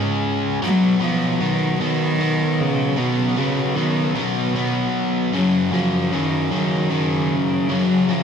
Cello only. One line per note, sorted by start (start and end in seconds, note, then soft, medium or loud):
0.00 0.32 G#2 loud
0.64 1.04 F#3 loud
1.03 1.42 F3 loud
1.41 1.79 D#3 loud
1.82 2.62 D#3 loud
2.60 3.00 C#3 loud
2.98 3.40 B2 loud
3.38 3.78 C#3 loud
3.76 4.20 D#3 loud
4.19 5.06 B2 loud
5.36 5.75 F#3 loud
5.74 6.16 F3 medium
6.14 6.53 D#3 loud
6.54 7.34 D#3 loud
7.32 7.73 C#3 loud
7.71 8.12 F#3 loud
8.11 8.23 F3 loud